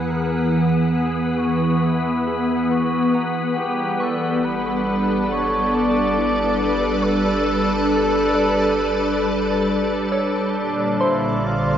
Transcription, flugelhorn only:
0.09 0.65 A#4 medium
0.94 1.39 G#4 medium
1.38 1.85 F#4 medium
1.84 2.73 E4 medium
2.72 3.36 F#4 medium
3.57 4.04 G4 medium
4.02 4.47 A4 medium
4.45 5.34 B4 medium
5.33 5.76 C#5 medium
5.74 7.05 D5 loud
7.04 9.68 A4 medium
10.57 11.02 D4 medium
11.01 11.48 E4 medium
11.46 11.78 F4 medium

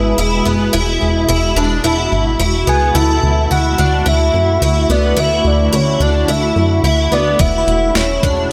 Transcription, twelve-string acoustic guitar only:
0.00 0.17 E4 medium
0.18 0.46 E4 medium
0.45 0.73 B3 medium
0.73 1.27 E4 medium
1.29 1.56 E4 medium
1.57 1.84 D4 medium
1.84 2.38 E4 medium
2.40 2.67 E4 medium
2.67 2.95 B3 medium
2.95 3.50 E4 medium
3.51 3.79 E4 medium
3.78 4.06 D4 medium
4.06 4.61 E4 medium
4.62 4.90 E4 medium
4.90 5.18 B3 medium
5.17 5.71 E4 medium
5.73 6.01 E4 medium
6.01 6.28 D4 medium
6.28 6.83 E4 medium
6.84 7.12 E4 medium
7.12 7.40 B3 medium
7.39 7.94 E4 medium
7.95 8.23 E4 medium
8.24 8.51 D4 medium

